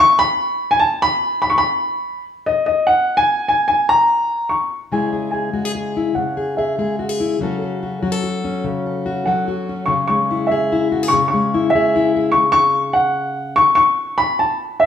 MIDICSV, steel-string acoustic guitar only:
0, 0, Header, 1, 2, 480
1, 0, Start_track
1, 0, Tempo, 411241
1, 9, Time_signature, 3, 2, 24, 8
1, 17346, End_track
2, 0, Start_track
2, 0, Title_t, "Steel-string acoustic guitar"
2, 0, Program_c, 0, 25
2, 5738, Note_on_c, 0, 49, 44
2, 5748, Note_on_c, 0, 56, 37
2, 5754, Note_on_c, 0, 64, 35
2, 5759, Note_on_c, 0, 68, 42
2, 5980, Note_off_c, 0, 68, 0
2, 5985, Note_on_c, 0, 68, 40
2, 6226, Note_off_c, 0, 68, 0
2, 6231, Note_on_c, 0, 68, 45
2, 6447, Note_off_c, 0, 56, 0
2, 6456, Note_off_c, 0, 68, 0
2, 6459, Note_on_c, 0, 56, 42
2, 6461, Note_on_c, 0, 66, 45
2, 6596, Note_off_c, 0, 66, 0
2, 6596, Note_on_c, 0, 68, 34
2, 6699, Note_off_c, 0, 68, 0
2, 6713, Note_on_c, 0, 68, 44
2, 6951, Note_off_c, 0, 64, 0
2, 6965, Note_on_c, 0, 64, 40
2, 7163, Note_off_c, 0, 56, 0
2, 7169, Note_off_c, 0, 68, 0
2, 7174, Note_off_c, 0, 64, 0
2, 7183, Note_off_c, 0, 49, 0
2, 7188, Note_on_c, 0, 49, 44
2, 7436, Note_on_c, 0, 68, 44
2, 7671, Note_off_c, 0, 68, 0
2, 7685, Note_on_c, 0, 68, 49
2, 7912, Note_off_c, 0, 68, 0
2, 7917, Note_on_c, 0, 56, 45
2, 7926, Note_on_c, 0, 68, 50
2, 8156, Note_off_c, 0, 68, 0
2, 8160, Note_on_c, 0, 66, 49
2, 8276, Note_off_c, 0, 66, 0
2, 8276, Note_on_c, 0, 68, 37
2, 8407, Note_on_c, 0, 64, 43
2, 8616, Note_off_c, 0, 56, 0
2, 8619, Note_off_c, 0, 64, 0
2, 8639, Note_off_c, 0, 49, 0
2, 8643, Note_off_c, 0, 68, 0
2, 8644, Note_on_c, 0, 49, 46
2, 8651, Note_on_c, 0, 54, 42
2, 8660, Note_on_c, 0, 61, 43
2, 8670, Note_on_c, 0, 66, 42
2, 8676, Note_on_c, 0, 69, 47
2, 8888, Note_off_c, 0, 69, 0
2, 8893, Note_on_c, 0, 69, 46
2, 9132, Note_off_c, 0, 66, 0
2, 9137, Note_on_c, 0, 66, 44
2, 9353, Note_off_c, 0, 66, 0
2, 9354, Note_off_c, 0, 54, 0
2, 9363, Note_off_c, 0, 69, 0
2, 9367, Note_on_c, 0, 54, 48
2, 9368, Note_on_c, 0, 66, 49
2, 9370, Note_off_c, 0, 49, 0
2, 9476, Note_off_c, 0, 66, 0
2, 9476, Note_on_c, 0, 69, 37
2, 9609, Note_on_c, 0, 66, 44
2, 9853, Note_off_c, 0, 61, 0
2, 9857, Note_on_c, 0, 61, 43
2, 10065, Note_off_c, 0, 66, 0
2, 10085, Note_on_c, 0, 49, 56
2, 10088, Note_off_c, 0, 69, 0
2, 10343, Note_on_c, 0, 69, 46
2, 10573, Note_on_c, 0, 66, 45
2, 10804, Note_off_c, 0, 54, 0
2, 10810, Note_off_c, 0, 69, 0
2, 10814, Note_off_c, 0, 49, 0
2, 10817, Note_on_c, 0, 54, 48
2, 10824, Note_on_c, 0, 69, 52
2, 11049, Note_off_c, 0, 66, 0
2, 11063, Note_on_c, 0, 66, 47
2, 11306, Note_off_c, 0, 61, 0
2, 11311, Note_on_c, 0, 61, 45
2, 11514, Note_off_c, 0, 66, 0
2, 11515, Note_off_c, 0, 69, 0
2, 11518, Note_off_c, 0, 61, 0
2, 11530, Note_on_c, 0, 49, 57
2, 11541, Note_off_c, 0, 54, 0
2, 11776, Note_on_c, 0, 56, 47
2, 12030, Note_on_c, 0, 64, 50
2, 12273, Note_on_c, 0, 68, 59
2, 12502, Note_off_c, 0, 64, 0
2, 12516, Note_on_c, 0, 64, 50
2, 12740, Note_off_c, 0, 68, 0
2, 12744, Note_on_c, 0, 66, 55
2, 12874, Note_off_c, 0, 66, 0
2, 12874, Note_on_c, 0, 68, 45
2, 12953, Note_off_c, 0, 56, 0
2, 12962, Note_off_c, 0, 64, 0
2, 12984, Note_off_c, 0, 49, 0
2, 12988, Note_on_c, 0, 49, 58
2, 12989, Note_off_c, 0, 68, 0
2, 13233, Note_on_c, 0, 56, 54
2, 13474, Note_on_c, 0, 64, 57
2, 13719, Note_on_c, 0, 68, 61
2, 13943, Note_off_c, 0, 64, 0
2, 13957, Note_on_c, 0, 64, 52
2, 14182, Note_off_c, 0, 68, 0
2, 14196, Note_on_c, 0, 68, 59
2, 14400, Note_off_c, 0, 56, 0
2, 14401, Note_off_c, 0, 68, 0
2, 14402, Note_off_c, 0, 64, 0
2, 15862, Note_off_c, 0, 49, 0
2, 17346, End_track
0, 0, End_of_file